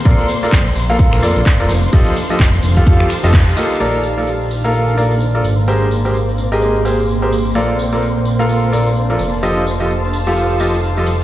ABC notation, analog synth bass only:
X:1
M:4/4
L:1/16
Q:"Swing 16ths" 1/4=128
K:Bb
V:1 name="Analog synth bass" clef=bass
B,,, z3 B,,, z B,,,3 B,,, F,, B,,, z F,,, F,,, z | F,,, z3 F,,, z F,,, z F,, z2 F,,,3 z2 | B,,,12- B,,,2 _A,,,2- | _A,,,16 |
B,,,12- B,,,2 F,,,2- | F,,,16 |]